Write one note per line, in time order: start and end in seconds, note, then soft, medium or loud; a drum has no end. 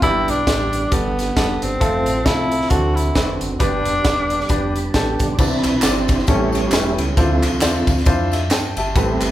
0.02 0.24 G1 medium
0.02 0.69 G2 medium
0.02 1.79 D3 medium
0.02 0.31 G3 medium
0.02 1.79 G3 medium
0.02 0.31 B3 medium
0.02 1.79 B3 medium
0.02 0.31 D4 medium
0.02 0.31 E4 medium
0.02 0.10 F4 medium
0.02 0.31 G4 medium
0.02 kick medium
0.02 closed hi-hat medium
0.10 1.80 G4 medium
0.28 0.44 B1 medium
0.28 0.95 D4 medium
0.28 closed hi-hat medium
0.47 0.85 A1 medium
0.47 0.76 G3 medium
0.47 0.76 B3 medium
0.47 0.76 D4 medium
0.47 0.76 G4 medium
0.47 kick medium
0.47 snare loud
0.47 closed hi-hat loud
0.73 closed hi-hat medium
0.91 1.30 G1 medium
0.91 1.21 G3 medium
0.91 1.21 B3 medium
0.91 1.37 B3 medium
0.91 1.21 D4 medium
0.91 1.21 A4 medium
0.91 kick loud
0.91 closed hi-hat medium
1.18 snare soft
1.18 closed hi-hat medium
1.36 1.59 F1 medium
1.36 1.65 G3 medium
1.36 1.65 B3 medium
1.36 1.66 D4 medium
1.36 1.66 A4 medium
1.36 kick medium
1.36 snare loud
1.36 closed hi-hat medium
1.62 1.78 G1 medium
1.62 2.27 C4 medium
1.62 closed hi-hat medium
1.80 2.07 F1 medium
1.80 2.69 F3 medium
1.80 2.10 A3 medium
1.80 2.69 A3 medium
1.80 2.10 C4 medium
1.80 2.69 C4 medium
1.80 2.10 F4 medium
1.80 1.87 G4 medium
1.80 2.10 A4 medium
1.80 kick loud
1.80 closed hi-hat medium
1.86 2.72 A4 medium
2.06 2.26 A1 medium
2.06 closed hi-hat medium
2.26 2.64 C2 medium
2.26 2.55 A3 medium
2.26 2.55 C4 medium
2.26 2.71 E4 medium
2.26 2.55 F4 medium
2.26 2.55 A4 medium
2.26 kick medium
2.26 snare loud
2.26 closed hi-hat medium
2.52 closed hi-hat medium
2.62 snare soft
2.70 3.09 D2 loud
2.70 3.37 D3 medium
2.70 3.59 D3 medium
2.70 3.59 A3 medium
2.70 3.58 C4 medium
2.70 3.00 C4 medium
2.70 3.00 D4 medium
2.70 2.96 F#4 medium
2.70 3.00 F#4 medium
2.70 3.59 F#4 medium
2.70 3.00 A4 medium
2.70 kick loud
2.70 closed hi-hat medium
2.95 3.35 E4 medium
2.95 closed hi-hat medium
3.15 3.38 E1 medium
3.15 3.45 C4 medium
3.15 3.45 D4 medium
3.15 3.45 F#4 medium
3.15 3.45 B4 medium
3.15 kick medium
3.15 snare loud
3.15 closed hi-hat medium
3.41 3.57 F#1 medium
3.41 closed hi-hat medium
3.60 3.82 G1 medium
3.60 4.27 G2 medium
3.60 5.36 D3 medium
3.60 5.35 G3 medium
3.60 3.89 B3 medium
3.60 5.35 B3 medium
3.60 4.90 D4 loud
3.60 3.89 D4 medium
3.60 5.35 G4 medium
3.60 3.89 G4 medium
3.60 3.89 B4 medium
3.60 kick loud
3.60 closed hi-hat medium
3.85 4.02 F1 medium
3.85 closed hi-hat medium
4.05 4.43 E1 medium
4.05 4.34 B3 medium
4.05 4.34 D4 medium
4.05 4.34 G4 medium
4.05 4.34 B4 medium
4.05 kick medium
4.05 snare loud
4.05 closed hi-hat medium
4.30 closed hi-hat medium
4.40 snare soft
4.49 4.88 F1 medium
4.49 4.79 B3 medium
4.49 4.79 D4 medium
4.49 4.79 G4 medium
4.49 4.79 B4 medium
4.49 kick loud
4.49 closed hi-hat medium
4.76 4.85 B5 medium
4.76 closed hi-hat medium
4.84 4.93 A5 medium
4.94 5.16 A1 medium
4.94 5.24 B3 medium
4.94 5.24 D4 medium
4.94 5.24 G4 medium
4.94 5.24 A4 medium
4.94 5.19 G5 medium
4.94 kick medium
4.94 snare loud
4.94 closed hi-hat medium
5.20 5.36 B1 medium
5.20 5.38 D5 medium
5.20 kick medium
5.20 closed hi-hat medium
5.33 5.39 C5 medium
5.38 5.61 C2 loud
5.38 6.06 C3 medium
5.38 6.24 E3 medium
5.38 5.68 C4 medium
5.38 6.25 C4 medium
5.38 6.25 D4 medium
5.38 5.68 D4 medium
5.38 5.83 E4 medium
5.38 5.69 E4 medium
5.38 5.85 B4 medium
5.38 5.68 B4 medium
5.38 kick loud
5.38 crash medium
5.38 tambourine medium
5.64 5.81 B1 medium
5.64 clap medium
5.64 ride bell medium
5.64 tambourine soft
5.82 6.21 G1 medium
5.82 6.12 C4 medium
5.82 6.12 D4 medium
5.82 6.13 E4 medium
5.82 6.25 E4 medium
5.82 6.26 G4 medium
5.82 6.30 C5 medium
5.82 6.13 D5 medium
5.82 snare loud
5.82 clap loud
5.82 ride bell medium
5.82 tambourine loud
6.08 kick medium
6.08 ride bell medium
6.08 tambourine medium
6.19 snare soft
6.27 6.66 A1 loud
6.27 6.95 A2 medium
6.27 7.13 G3 medium
6.27 7.14 B3 medium
6.27 6.57 C#4 medium
6.27 6.72 C#4 medium
6.27 6.57 E4 medium
6.27 6.73 E4 medium
6.27 6.57 G4 medium
6.27 7.14 G4 medium
6.27 6.57 A4 medium
6.27 6.75 C#5 loud
6.27 kick loud
6.27 ride bell medium
6.27 tambourine medium
6.53 ride bell medium
6.53 tambourine medium
6.71 6.94 E1 loud
6.71 7.02 C#4 medium
6.71 7.15 C#4 medium
6.71 7.02 E4 medium
6.71 7.15 E4 medium
6.71 7.02 G4 medium
6.71 7.13 A4 medium
6.71 7.02 B4 medium
6.71 snare loud
6.71 clap medium
6.71 ride bell medium
6.71 tambourine medium
6.98 7.14 C#2 loud
6.98 ride bell medium
6.98 tambourine medium
7.11 7.17 G#4 medium
7.16 7.39 D2 loud
7.16 7.84 D3 medium
7.16 7.48 F3 medium
7.16 8.03 C4 medium
7.16 7.46 D4 medium
7.16 7.46 E4 medium
7.16 7.49 E4 medium
7.16 7.46 F4 medium
7.16 8.02 F4 medium
7.16 7.84 A4 medium
7.16 7.46 C5 medium
7.16 kick loud
7.16 ride bell medium
7.16 tambourine medium
7.43 clap medium
7.43 ride bell medium
7.43 tambourine soft
7.61 7.84 E2 medium
7.61 7.91 D4 medium
7.61 7.91 E4 medium
7.61 7.91 F4 medium
7.61 7.91 C5 medium
7.61 snare loud
7.61 clap loud
7.61 ride bell medium
7.61 tambourine loud
7.87 8.03 D2 medium
7.87 kick medium
7.87 ride bell medium
7.87 tambourine medium
7.97 snare soft
8.05 8.50 F2 medium
8.05 8.35 D4 medium
8.05 8.35 E4 medium
8.05 8.35 F4 medium
8.05 8.36 C5 medium
8.05 kick loud
8.05 ride bell medium
8.05 tambourine medium
8.32 8.50 E5 medium
8.32 snare soft
8.32 ride bell medium
8.32 tambourine medium
8.50 8.73 G2 loud
8.50 8.77 C5 medium
8.50 8.76 G5 medium
8.50 8.76 A5 medium
8.50 snare loud
8.50 clap medium
8.50 ride bell medium
8.50 tambourine medium
8.76 8.92 G1 medium
8.76 8.95 G4 medium
8.76 9.20 E5 medium
8.76 8.95 A5 medium
8.76 ride bell medium
8.76 tambourine soft
8.95 9.17 A1 loud
8.95 9.31 A2 medium
8.95 9.31 G3 medium
8.95 9.31 B3 medium
8.95 9.31 C4 medium
8.95 9.25 C4 medium
8.95 9.31 E4 medium
8.95 9.31 G4 medium
8.95 9.25 G4 medium
8.95 9.25 A4 medium
8.95 9.25 B4 medium
8.95 9.31 B4 medium
8.95 kick loud
8.95 ride bell medium
8.95 tambourine medium
9.21 9.31 G1 medium
9.21 clap medium
9.21 ride bell medium
9.21 tambourine medium